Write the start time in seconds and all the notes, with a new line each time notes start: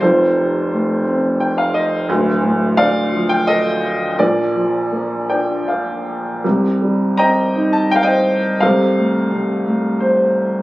0.01 F1 F2 F4 A4 C5
0.37 C3
0.73 A3
1.07 C4
1.40 G5
1.58 F5
1.74 D#5
2.09 D1 D2
2.43 A2
2.77 D3 A4 D5 F5
3.13 F3
3.29 G5
3.47 A4 D#5
4.19 A#1 A#2 F4 A#4 D5
4.56 F3
4.92 A#3
5.29 D4 G5
5.68 F5
6.44 C2 C3
6.82 G3
7.17 C4 D#5 G5 A#5
7.55 D#4
7.73 A5
7.91 G5
7.96 F5
8.03 C5 D#5 G5
8.60 C2 C3 A4 C5 F5
8.97 A3
9.31 C3
9.66 A3
10.00 C5